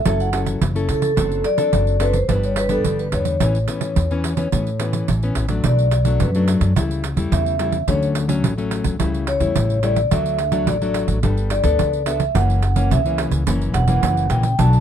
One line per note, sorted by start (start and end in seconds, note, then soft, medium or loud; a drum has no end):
0.00 0.16 E5 medium
0.05 0.53 F#1 medium
0.05 0.58 F#3 medium
0.05 0.29 C#4 soft
0.05 0.29 E4 medium
0.05 0.29 A4 medium
0.05 pandeiro medium
0.20 0.33 F#5 medium
0.20 pandeiro soft
0.33 0.59 C#4 medium
0.33 0.59 E4 medium
0.33 0.60 A4 medium
0.33 pandeiro medium
0.46 pandeiro medium
0.61 0.85 F#1 medium
0.61 1.15 C#3 medium
0.61 pandeiro medium
0.75 1.13 C#4 medium
0.75 1.13 E4 medium
0.75 1.13 A4 medium
0.75 pandeiro soft
0.89 1.13 C#2 medium
0.89 1.02 A4 medium
0.89 pandeiro medium
1.02 1.46 A4 medium
1.02 pandeiro medium
1.16 1.41 F#1 medium
1.16 1.70 F#3 medium
1.16 1.43 C4 medium
1.16 1.43 D4 medium
1.16 1.43 A4 medium
1.16 pandeiro medium
1.32 pandeiro soft
1.44 2.03 D5 medium
1.44 pandeiro medium
1.57 1.96 C4 medium
1.57 1.96 D4 medium
1.57 1.96 A4 medium
1.57 pandeiro medium
1.73 2.20 F#1 medium
1.73 2.26 F#3 medium
1.73 pandeiro medium
1.87 pandeiro soft
2.00 2.17 C4 medium
2.00 2.17 D4 medium
2.00 2.17 A4 medium
2.00 2.08 B4 medium
2.00 pandeiro medium
2.13 2.29 C5 medium
2.13 pandeiro medium
2.28 2.76 G1 medium
2.28 2.82 G2 medium
2.28 2.66 G3 medium
2.28 2.66 B3 medium
2.28 2.66 D4 medium
2.28 2.44 B4 medium
2.28 pandeiro medium
2.44 2.57 C#5 medium
2.44 pandeiro soft
2.56 2.72 B4 medium
2.56 pandeiro medium
2.69 3.08 G3 medium
2.69 3.08 B3 medium
2.69 3.08 D4 medium
2.69 2.97 A4 medium
2.69 pandeiro medium
2.85 3.09 G1 medium
2.85 3.38 D3 medium
2.85 pandeiro medium
2.99 3.14 B4 medium
2.99 pandeiro soft
3.12 3.36 E2 medium
3.12 3.36 G3 medium
3.12 3.36 B3 soft
3.12 3.36 D4 medium
3.12 5.04 C#5 medium
3.12 pandeiro medium
3.25 pandeiro medium
3.40 3.64 A1 loud
3.40 3.94 A2 medium
3.40 3.57 E3 medium
3.40 3.57 B3 medium
3.40 3.58 C#4 medium
3.40 pandeiro medium
3.55 pandeiro soft
3.68 3.95 E3 medium
3.68 4.06 B3 medium
3.68 4.06 C#4 medium
3.68 pandeiro medium
3.81 pandeiro medium
3.96 4.44 E2 medium
3.96 4.10 E3 medium
3.96 pandeiro medium
4.11 4.34 E3 medium
4.11 4.34 B3 medium
4.11 4.35 C#4 medium
4.11 pandeiro soft
4.24 pandeiro medium
4.37 4.47 E3 medium
4.37 4.47 B3 medium
4.37 4.48 C#4 medium
4.37 pandeiro medium
4.52 5.06 A2 soft
4.52 5.00 A2 medium
4.52 4.69 E3 medium
4.52 4.69 B3 medium
4.52 4.69 C#4 medium
4.52 pandeiro medium
4.67 pandeiro soft
4.80 5.06 E3 medium
4.80 5.07 B3 medium
4.80 5.07 C#4 medium
4.80 pandeiro medium
4.93 pandeiro medium
5.08 5.32 A1 medium
5.08 5.22 E3 medium
5.08 pandeiro medium
5.23 5.46 E3 soft
5.23 5.46 B3 medium
5.23 5.47 C#4 medium
5.23 pandeiro soft
5.35 5.60 A1 medium
5.35 pandeiro medium
5.49 5.87 F#3 medium
5.49 5.88 A3 medium
5.49 5.88 D4 medium
5.49 pandeiro medium
5.64 6.22 B1 medium
5.64 6.18 B2 medium
5.64 6.17 D5 medium
5.64 pandeiro medium
5.79 pandeiro soft
5.91 pandeiro medium
6.05 6.29 F#3 medium
6.05 6.30 A3 medium
6.05 6.30 D4 medium
6.05 pandeiro medium
6.20 6.56 F#2 loud
6.20 6.74 F#2 medium
6.20 6.47 B4 medium
6.20 pandeiro medium
6.35 6.72 F#3 medium
6.35 6.72 A3 medium
6.35 6.73 D4 medium
6.35 pandeiro soft
6.48 pandeiro medium
6.61 6.73 F#2 medium
6.61 pandeiro medium
6.76 7.12 C#2 medium
6.76 7.29 C#3 medium
6.76 7.03 G3 soft
6.76 7.03 A3 medium
6.76 7.03 E4 medium
6.76 pandeiro medium
6.91 pandeiro soft
7.04 pandeiro medium
7.16 7.29 E2 medium
7.16 7.55 G3 medium
7.16 7.55 A3 medium
7.16 7.55 E4 medium
7.16 pandeiro medium
7.32 7.79 E2 medium
7.32 7.85 C#3 medium
7.32 7.84 E5 medium
7.32 pandeiro medium
7.46 pandeiro soft
7.59 7.76 G3 medium
7.59 7.77 A3 medium
7.59 7.77 E4 medium
7.59 pandeiro medium
7.72 pandeiro soft
7.88 8.44 D2 loud
7.88 8.41 D3 medium
7.88 8.25 F#3 medium
7.88 8.26 A3 medium
7.88 8.26 C#4 medium
7.88 8.05 C#5 medium
7.88 pandeiro medium
8.03 pandeiro soft
8.15 pandeiro medium
8.28 8.53 F#3 medium
8.28 8.53 A3 medium
8.28 8.53 C#4 medium
8.28 pandeiro medium
8.43 8.79 A1 medium
8.43 8.97 A2 medium
8.43 pandeiro medium
8.58 8.95 F#3 medium
8.58 8.95 A3 medium
8.58 8.96 C#4 medium
8.58 pandeiro soft
8.71 pandeiro medium
8.84 8.97 D2 medium
8.84 pandeiro medium
8.99 9.35 C#2 medium
8.99 9.53 C#3 medium
8.99 9.26 G3 medium
8.99 9.26 A3 medium
8.99 9.26 E4 medium
8.99 pandeiro medium
9.14 pandeiro soft
9.27 9.80 C#5 medium
9.27 pandeiro medium
9.40 9.53 E2 medium
9.40 9.78 G3 medium
9.40 9.78 A3 medium
9.40 9.79 E4 medium
9.40 pandeiro medium
9.56 10.03 A1 medium
9.56 10.09 C#3 medium
9.56 pandeiro medium
9.70 pandeiro soft
9.83 10.00 G3 medium
9.83 10.00 A3 medium
9.83 10.00 E4 medium
9.83 10.11 D5 medium
9.83 pandeiro medium
9.96 pandeiro medium
10.11 10.67 D2 medium
10.11 10.65 D3 medium
10.11 10.38 F#3 medium
10.11 10.38 A3 medium
10.11 10.38 D4 medium
10.11 10.64 E5 medium
10.11 pandeiro medium
10.26 pandeiro soft
10.39 pandeiro medium
10.52 10.76 F#3 medium
10.52 10.76 A3 medium
10.52 10.77 D4 medium
10.52 pandeiro medium
10.67 11.03 A1 medium
10.67 11.20 A2 medium
10.67 10.95 D5 medium
10.67 pandeiro medium
10.82 11.19 F#3 medium
10.82 11.19 A3 medium
10.82 11.19 D4 medium
10.82 pandeiro soft
10.94 pandeiro medium
11.08 11.20 A1 medium
11.08 pandeiro medium
11.23 11.59 G1 loud
11.23 11.76 G3 medium
11.23 11.49 B3 medium
11.23 11.49 D4 medium
11.23 11.50 A4 medium
11.23 pandeiro medium
11.38 pandeiro soft
11.50 12.03 D5 medium
11.50 pandeiro medium
11.64 11.76 D2 medium
11.64 12.02 B3 medium
11.64 12.02 D4 medium
11.64 12.02 A4 medium
11.64 pandeiro medium
11.79 12.26 C#2 medium
11.79 pandeiro medium
11.93 pandeiro soft
12.06 12.23 B3 medium
12.06 12.23 D4 medium
12.06 12.23 A4 medium
12.06 12.34 E5 medium
12.06 pandeiro medium
12.20 pandeiro medium
12.35 12.92 F#1 loud
12.35 12.88 F#2 medium
12.35 12.61 E3 medium
12.35 12.61 A#3 medium
12.35 12.62 C#4 medium
12.35 12.87 F#5 medium
12.35 pandeiro medium
12.50 pandeiro soft
12.62 pandeiro medium
12.76 13.00 E3 medium
12.76 13.00 A#3 medium
12.76 13.00 C#4 medium
12.76 pandeiro medium
12.91 13.26 C#2 medium
12.91 13.44 C#3 medium
12.91 13.18 E5 medium
12.91 pandeiro medium
13.05 13.43 E3 medium
13.05 13.43 A#3 medium
13.05 13.43 C#4 medium
13.05 pandeiro soft
13.18 pandeiro medium
13.31 13.44 C#2 medium
13.31 pandeiro medium
13.46 13.70 F#1 medium
13.46 14.00 F#2 medium
13.46 13.84 E3 medium
13.46 13.85 A#3 medium
13.46 13.85 C#4 medium
13.46 pandeiro medium
13.61 pandeiro soft
13.74 13.99 E1 medium
13.74 14.26 F#5 medium
13.74 pandeiro medium
13.88 14.26 E3 medium
13.88 14.26 A#3 medium
13.88 14.26 C#4 medium
13.88 pandeiro medium
14.02 14.28 F#1 medium
14.02 14.56 C#3 medium
14.02 pandeiro medium
14.17 pandeiro soft
14.30 14.55 A#1 medium
14.30 14.47 E3 medium
14.30 14.47 A#3 medium
14.30 14.47 C#4 medium
14.30 14.57 G5 medium
14.30 pandeiro medium
14.43 pandeiro medium
14.59 14.80 B1 loud
14.59 14.80 B2 medium
14.59 14.80 F#3 medium
14.59 14.80 A3 medium
14.59 14.80 D4 medium
14.59 14.80 A5 medium
14.59 pandeiro medium
14.73 pandeiro soft